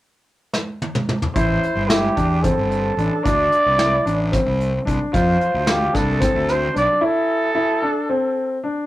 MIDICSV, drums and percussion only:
0, 0, Header, 1, 2, 480
1, 0, Start_track
1, 0, Key_signature, 0, "minor"
1, 0, Tempo, 540541
1, 1205, Time_signature, 7, 3, 24, 8
1, 7871, End_track
2, 0, Start_track
2, 0, Title_t, "Drums"
2, 475, Note_on_c, 9, 38, 64
2, 564, Note_off_c, 9, 38, 0
2, 727, Note_on_c, 9, 48, 67
2, 815, Note_off_c, 9, 48, 0
2, 843, Note_on_c, 9, 47, 77
2, 932, Note_off_c, 9, 47, 0
2, 966, Note_on_c, 9, 47, 75
2, 1055, Note_off_c, 9, 47, 0
2, 1085, Note_on_c, 9, 43, 93
2, 1174, Note_off_c, 9, 43, 0
2, 1206, Note_on_c, 9, 36, 98
2, 1206, Note_on_c, 9, 42, 68
2, 1295, Note_off_c, 9, 36, 0
2, 1295, Note_off_c, 9, 42, 0
2, 1449, Note_on_c, 9, 42, 47
2, 1538, Note_off_c, 9, 42, 0
2, 1685, Note_on_c, 9, 38, 88
2, 1685, Note_on_c, 9, 42, 70
2, 1774, Note_off_c, 9, 38, 0
2, 1774, Note_off_c, 9, 42, 0
2, 1927, Note_on_c, 9, 42, 56
2, 1929, Note_on_c, 9, 36, 59
2, 2016, Note_off_c, 9, 42, 0
2, 2017, Note_off_c, 9, 36, 0
2, 2167, Note_on_c, 9, 42, 77
2, 2168, Note_on_c, 9, 36, 91
2, 2256, Note_off_c, 9, 42, 0
2, 2257, Note_off_c, 9, 36, 0
2, 2411, Note_on_c, 9, 42, 52
2, 2500, Note_off_c, 9, 42, 0
2, 2651, Note_on_c, 9, 42, 54
2, 2740, Note_off_c, 9, 42, 0
2, 2891, Note_on_c, 9, 36, 91
2, 2894, Note_on_c, 9, 42, 71
2, 2980, Note_off_c, 9, 36, 0
2, 2983, Note_off_c, 9, 42, 0
2, 3127, Note_on_c, 9, 42, 51
2, 3215, Note_off_c, 9, 42, 0
2, 3365, Note_on_c, 9, 38, 84
2, 3365, Note_on_c, 9, 42, 66
2, 3453, Note_off_c, 9, 38, 0
2, 3453, Note_off_c, 9, 42, 0
2, 3612, Note_on_c, 9, 42, 56
2, 3701, Note_off_c, 9, 42, 0
2, 3845, Note_on_c, 9, 38, 33
2, 3845, Note_on_c, 9, 42, 72
2, 3847, Note_on_c, 9, 36, 91
2, 3934, Note_off_c, 9, 38, 0
2, 3934, Note_off_c, 9, 42, 0
2, 3936, Note_off_c, 9, 36, 0
2, 4090, Note_on_c, 9, 42, 51
2, 4178, Note_off_c, 9, 42, 0
2, 4327, Note_on_c, 9, 36, 64
2, 4331, Note_on_c, 9, 42, 55
2, 4416, Note_off_c, 9, 36, 0
2, 4420, Note_off_c, 9, 42, 0
2, 4565, Note_on_c, 9, 36, 91
2, 4567, Note_on_c, 9, 42, 68
2, 4654, Note_off_c, 9, 36, 0
2, 4656, Note_off_c, 9, 42, 0
2, 4804, Note_on_c, 9, 42, 49
2, 4893, Note_off_c, 9, 42, 0
2, 5035, Note_on_c, 9, 38, 98
2, 5035, Note_on_c, 9, 42, 64
2, 5124, Note_off_c, 9, 38, 0
2, 5124, Note_off_c, 9, 42, 0
2, 5282, Note_on_c, 9, 36, 71
2, 5283, Note_on_c, 9, 38, 27
2, 5283, Note_on_c, 9, 42, 52
2, 5371, Note_off_c, 9, 36, 0
2, 5372, Note_off_c, 9, 38, 0
2, 5372, Note_off_c, 9, 42, 0
2, 5520, Note_on_c, 9, 38, 34
2, 5520, Note_on_c, 9, 42, 77
2, 5521, Note_on_c, 9, 36, 101
2, 5609, Note_off_c, 9, 38, 0
2, 5609, Note_off_c, 9, 42, 0
2, 5610, Note_off_c, 9, 36, 0
2, 5760, Note_on_c, 9, 38, 30
2, 5760, Note_on_c, 9, 42, 53
2, 5849, Note_off_c, 9, 38, 0
2, 5849, Note_off_c, 9, 42, 0
2, 6004, Note_on_c, 9, 42, 55
2, 6093, Note_off_c, 9, 42, 0
2, 7871, End_track
0, 0, End_of_file